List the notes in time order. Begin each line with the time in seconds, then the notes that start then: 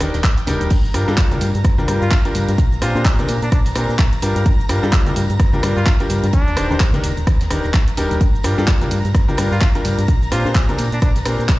Already playing: G5 G6
0.00 D#1 D#3 D4 D#4 G4 A#4, cross-stick, snare, open hi-hat, ride, tambourine, shaker
0.14 D#1, snare, closed hi-hat, ride, tambourine, shaker
0.23 D#2, kick, snare, clap, closed hi-hat, ride, tambourine, shaker
0.37 closed hi-hat, tambourine, shaker
0.47 D#1 G3 D4 D#4 G4 A#4, snare, open hi-hat, ride, tambourine, high conga, shaker
0.61 D#1, snare, closed hi-hat, tambourine, shaker
0.70 G1 A#5 A#6, kick, closed hi-hat, crash, ride, tambourine, shaker
0.85 tambourine, shaker
0.94 G2 G3 D4 F4 G4 A#4, cross-stick, snare, open hi-hat, ride, tambourine, shaker
1.08 G2 G3 D4 F4 G4 A4, ride, tambourine, shaker
1.18 G1, kick, snare, clap, closed hi-hat, ride, tambourine, shaker
1.31 G3 D4 F4 G4 A#4, snare, closed hi-hat, tambourine, high conga, shaker
1.41 G2, open hi-hat, ride, tambourine, shaker
1.54 G2, closed hi-hat, tambourine, shaker
1.64 G1, kick, cross-stick, closed hi-hat, ride, tambourine, shaker
1.78 G3 D4 F4 G4 A#4, tambourine, high conga, shaker
1.88 G2 G3 D4 F4 G4 A#4, cross-stick, open hi-hat, ride, tambourine, shaker
2.02 G2 F4, tambourine, shaker
2.11 G1, kick, snare, clap, closed hi-hat, ride, shaker
2.25 G3 D4 F4 G4 A#4, closed hi-hat, tambourine
2.35 G2, snare, open hi-hat, ride, tambourine, high conga, shaker
2.48 G2, snare, closed hi-hat, tambourine, shaker
2.58 A#1, kick, closed hi-hat, ride, tambourine, shaker
2.72 tambourine, shaker
2.82 A#2 C4 D4 F4 G4 C5, cross-stick, open hi-hat, ride, tambourine, shaker
2.95 A#2 C4 D4 G4 C5, tambourine, shaker
3.05 A#1, kick, snare, clap, closed hi-hat, ride, shaker
3.19 A#2 C4 D4 G4 A#4, closed hi-hat, tambourine, high conga, shaker
3.28 A#2, open hi-hat, ride, tambourine, shaker
3.42 A#2 D4, closed hi-hat, tambourine, shaker
3.52 A#1 D4, kick, cross-stick, closed hi-hat, ride, tambourine, shaker
3.65 snare, open hi-hat, tambourine, shaker
3.75 A#2 C4 D4 G4 A#4, cross-stick, open hi-hat, ride, tambourine, shaker
3.89 A#2, tambourine, shaker
3.99 A#1, kick, snare, clap, closed hi-hat, ride, shaker
4.12 closed hi-hat, tambourine
4.22 G2 G3 D4 F4 G4 A#4, open hi-hat, ride, tambourine, shaker
4.36 G2, snare, closed hi-hat, tambourine, shaker
4.45 G1, kick, closed hi-hat, ride, tambourine, shaker
4.60 tambourine, shaker
4.69 G2 G3 D4 F4 G4 A#4, cross-stick, snare, open hi-hat, ride, tambourine, shaker
4.83 G2 G3 D4 F4 G4 A4, ride, tambourine, shaker
4.92 G1, kick, snare, clap, closed hi-hat, ride, tambourine, shaker
5.06 G3 D4 F4 G4 A#4, snare, closed hi-hat, tambourine, high conga, shaker
5.16 G2, open hi-hat, ride, tambourine, shaker
5.30 G2, closed hi-hat, tambourine, shaker
5.40 G1, kick, cross-stick, closed hi-hat, ride, tambourine, shaker
5.53 G3 D4 F4 G4 A#4, tambourine, high conga, shaker
5.63 G2 G3 D4 F4 G4 A#4, cross-stick, open hi-hat, ride, tambourine, shaker
5.76 G2 F4, tambourine, shaker
5.86 G1, kick, snare, clap, closed hi-hat, ride, shaker
6.00 G3 D4 F4 G4 A#4, closed hi-hat, tambourine
6.09 G2, snare, open hi-hat, ride, tambourine, high conga, shaker
6.23 G2, snare, closed hi-hat, tambourine, shaker
6.33 D#2 D4, kick, closed hi-hat, ride, tambourine, shaker
6.47 tambourine, shaker
6.57 D#1 D#3 D4 D#4 G4 C5, cross-stick, open hi-hat, ride, tambourine, shaker
6.70 D#1 D#3 D4 D#4 G4 C5, tambourine, shaker
6.80 D#2, kick, snare, clap, closed hi-hat, ride, shaker
6.93 D#3 D4 D#4 G4 A#4, closed hi-hat, tambourine, high conga, shaker
7.03 D#1, open hi-hat, ride, tambourine, shaker
7.17 D#1, closed hi-hat, tambourine, shaker
7.27 D#2, kick, cross-stick, closed hi-hat, ride, tambourine, shaker
7.41 snare, open hi-hat, tambourine, shaker
7.50 D#1 D#3 D4 D#4 G4 A#4, cross-stick, open hi-hat, ride, tambourine, shaker
7.63 D#1, tambourine, shaker
7.74 D#2, kick, snare, clap, closed hi-hat, ride, shaker
7.88 closed hi-hat, tambourine, shaker
7.97 D#1 G3 D4 D#4 G4 A#4, open hi-hat, ride, tambourine, shaker
8.11 D#1, snare, closed hi-hat, tambourine, shaker
8.20 G1 A#5 A#6, kick, closed hi-hat, ride, tambourine, shaker
8.35 tambourine, shaker
8.43 G2 G3 D4 F4 G4 A#4, cross-stick, snare, open hi-hat, ride, tambourine, shaker
8.58 G2 G3 D4 F4 G4 A4, ride, tambourine, shaker
8.67 G1, kick, snare, clap, closed hi-hat, ride, tambourine, shaker
8.81 G3 D4 F4 G4 A#4, snare, closed hi-hat, tambourine, high conga, shaker
8.91 G2, open hi-hat, ride, tambourine, shaker
9.05 G2, closed hi-hat, tambourine, shaker
9.15 G1, kick, cross-stick, closed hi-hat, ride, tambourine, shaker
9.28 G3 D4 F4 G4 A#4, tambourine, high conga, shaker
9.37 G2 G3 D4 F4 G4 A#4, cross-stick, open hi-hat, ride, tambourine, shaker
9.52 G2 F4, tambourine, shaker
9.61 G1, kick, snare, clap, closed hi-hat, ride, tambourine, shaker
9.75 G3 D4 F4 G4 A#4, closed hi-hat, tambourine
9.85 G2, snare, open hi-hat, ride, tambourine, high conga, shaker
9.98 G2, snare, closed hi-hat, tambourine, shaker
10.08 A#1, kick, closed hi-hat, ride, tambourine, shaker
10.22 tambourine, shaker
10.31 A#2 C4 D4 F4 G4 C5, cross-stick, open hi-hat, ride, tambourine, shaker
10.45 A#2 C4 D4 G4 C5, tambourine, shaker
10.55 A#1, kick, snare, clap, closed hi-hat, ride, tambourine, shaker
10.69 A#2 C4 D4 G4 A#4, closed hi-hat, tambourine, high conga, shaker
10.78 A#2, open hi-hat, ride, tambourine, shaker
10.92 A#2 D4, closed hi-hat, tambourine, shaker
11.02 A#1 D4, kick, cross-stick, closed hi-hat, ride, tambourine, shaker
11.15 snare, open hi-hat, tambourine, shaker
11.25 A#2 C4 D4 G4 A#4, cross-stick, open hi-hat, ride, tambourine, shaker
11.39 A#2, tambourine, shaker
11.48 A#1, kick, snare, clap, closed hi-hat, ride, tambourine, shaker